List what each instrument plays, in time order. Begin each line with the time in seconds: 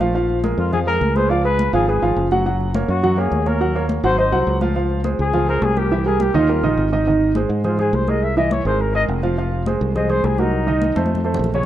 Already playing: fingered electric bass A#1
0.00 grand piano F3 F4 F5, high conga
0.15 grand piano F3 F4 F5, high conga
0.29 high conga
0.44 grand piano G#3 G#4 A#4, high conga
0.58 fingered electric bass F2, trumpet F4
0.72 grand piano F3 F4 F5, trumpet G#4, high conga, low conga
0.87 grand piano G#3 G#4 A#4, trumpet A#4, high conga
1.01 fingered electric bass C#2, high conga
1.16 grand piano G#3 G#4 B4, trumpet C5, high conga
1.29 grand piano F3 F4 F5, trumpet D5, high conga
1.44 grand piano G#3 G#4 B4, trumpet B4, high conga
1.59 high conga
1.73 fingered electric bass G#1, grand piano F3 F4 F5, trumpet G#4, high conga
1.88 grand piano G#3 G#4 B4, trumpet G#4, high conga
2.02 fingered electric bass G#1, grand piano F3 F4 F5, high conga
2.16 fingered electric bass F#1, high conga
2.31 grand piano F#3 F#4 F#5, high conga
2.46 grand piano F#3 F#4 F#5, high conga
2.60 high conga
2.75 grand piano A#3 A#4 C#5, high conga
2.88 fingered electric bass F#2, trumpet F#4
3.03 grand piano F#3 F#4 F#5, high conga, low conga
3.17 grand piano A#3 A#4 C#5, trumpet G#4, high conga
3.31 fingered electric bass D#2, high conga
3.46 grand piano A#3 A#4 C#5, trumpet A#4, high conga
3.60 grand piano F#3 F#4 F#5, high conga
3.75 grand piano A#3 A#4 C#5, high conga
3.89 high conga
4.04 fingered electric bass G#1, grand piano F#3 F#4 F#5, trumpet C5, high conga
4.18 grand piano C4 C5 D#5, trumpet C5, high conga
4.32 fingered electric bass C2, grand piano F#3 F#4 F#5, high conga
4.47 fingered electric bass C#2, high conga
4.61 grand piano F3 F4 F5, high conga
4.76 grand piano F3 F4 F5, high conga
4.90 high conga
5.04 grand piano G#3 G#4 C5, high conga
5.19 fingered electric bass C#2, trumpet G#4
5.33 grand piano F3 F4 F5, high conga, low conga
5.48 grand piano G#3 G#4 C5, trumpet A#4, high conga
5.62 fingered electric bass C2, trumpet G#4, high conga
5.77 grand piano G3 G4 A#4, trumpet G4, high conga
5.91 grand piano E3 E4 E5, high conga
6.05 grand piano G3 G4 A#4, trumpet G#4, high conga
6.20 trumpet G4, high conga
6.34 fingered electric bass D#2, grand piano D#3 D#4 D#5, trumpet F4, high conga
6.49 grand piano G3 G4 A#4, high conga
6.63 fingered electric bass A#1, grand piano D#3 D#4 D#5, high conga
6.77 fingered electric bass G#1, high conga
6.92 grand piano D#3 D#4 D#5
7.07 grand piano D#3 D#4 D#5, high conga
7.21 high conga
7.35 grand piano G#3 G#4 C5, high conga
7.49 fingered electric bass G#2
7.64 grand piano G#3 G#4 C5, trumpet F4, high conga, low conga
7.79 grand piano G#3 G#4 C5, trumpet G#4, high conga, low conga
7.93 fingered electric bass C2, trumpet C5, high conga
8.07 grand piano G#3 G#4 A#4, trumpet D#5, high conga
8.22 trumpet E5, high conga
8.37 grand piano E3 E4 E5, trumpet D#5, high conga
8.51 trumpet C#5, high conga
8.65 fingered electric bass G#1, grand piano G#3 G#4 A#4, trumpet C5, high conga
8.80 trumpet A#4, high conga
8.94 grand piano G#3 G#4 A#4, trumpet D#5, high conga
9.08 fingered electric bass F1, high conga
9.23 grand piano F3 F4 F5, high conga
9.37 grand piano F3 F4 F5, high conga
9.52 high conga
9.66 grand piano G#3 G#4 C5, high conga
9.81 fingered electric bass C2
9.95 grand piano G#3 G#4 C5, trumpet D#5, high conga, low conga
10.09 grand piano G#3 G#4 C5, trumpet C5, high conga, low conga
10.24 fingered electric bass C2, trumpet G#4, high conga
10.38 grand piano F#3 F#4 A#4, trumpet D#4, high conga
10.53 high conga
10.67 grand piano D#3 D#4 D#5, high conga
10.82 high conga
10.96 fingered electric bass F2, grand piano A3 A4 C5, high conga
11.06 high conga
11.15 high conga
11.25 grand piano A3 A4 C5
11.34 low conga
11.39 fingered electric bass A#1
11.44 low conga
11.54 grand piano C#3 C#4 C#5, trumpet C#5, low conga